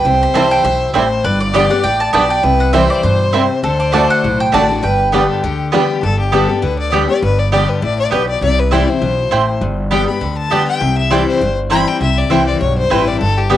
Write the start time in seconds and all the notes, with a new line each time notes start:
Already playing: G5
0.05 C2 C3 C5
0.23 B5
0.34 C2 E3 G3 C4 E4 C5 G5 A5
0.51 G5
0.64 B1 B2 E5
0.94 A1 A2 G3 C4 E4 C5 G5
1.24 G1 G2 B4 D5
1.40 D5
1.53 D3 G3 B3 D4 G4 D5 G5
1.70 B3 G4 F#5
1.84 A1 A2 G5
2.00 A5
2.13 B1 B2 G3 B3 D4 G4 D5 G5 A5
2.30 G5
2.43 C2 C3 B4
2.60 F#5
2.73 E3 G3 C4 E4 C5 E5 G5
2.90 D5
3.03 G2 B2 C5
3.33 C3 G3 C4 E4 C5 G5
3.63 D2 D3 A4 C5
3.80 D5
3.92 D3 A3 D4 F#4 D5 A5
4.10 F#5
4.23 B1 A2
4.40 G5
4.52 A1 D3 A3 D4 F#4 D5 A5
4.69 D4 F#4
4.83 G1 G2 B4 G5
5.12 D3 G3 B3 D4 G4 B4 D5 G5
5.30 A4
5.43 D2 D3 G4
5.72 D3 G3 B3 D4 G4 D5 G5
6.03 G1 G2 A4
6.19 G4
6.32 D3 G3 B3 G4 A4 D5 G5
6.49 B3 G4
6.62 D2 D3 B4
6.79 D5
6.92 D3 G3 B3 G4 D5 G5
7.08 B3 G4 D5
7.22 G1 G2 B4
7.39 D5
7.52 D3 G3 B3 G4 D5 G5
7.69 B4
7.82 A1 A2 D5
7.99 D5
8.11 B1 B2 B3 G4 B4 D5 G5
8.29 D5
8.41 C2 C3 D5
8.59 B4
8.71 E3 G3 C4 E4 C5 D5 G5
8.87 C4 E4 C5
9.01 B1 B2
9.31 A1 A2 C4 E4 C5 G5
9.61 G1 G2
9.91 D3 G3 B3 G4 D5 G5
10.07 B3 G4 B5
10.21 D2 D3
10.38 A5
10.50 D3 G3 B3 G4 D5 G5
10.68 G5
10.81 C2 C3
10.98 E5
11.10 E3 G3 C4 E4 C5 D5 G5
11.28 C5
11.41 G1 G2
11.70 E3 G3 C4 E4 C5 G5 B5
11.88 G5
12.01 C2 C3 E5
12.18 D5
12.30 C2 E3 G3 C4 E4 C5 G5
12.47 D5
12.60 B1 G2 C#5
12.78 C5
12.90 A1 E3 G3 C4 E4 B4 C5 G5
13.07 D5
13.20 G1 G2 A4
13.37 G4
13.50 D3 G3 B3 E4 G4 D5 G5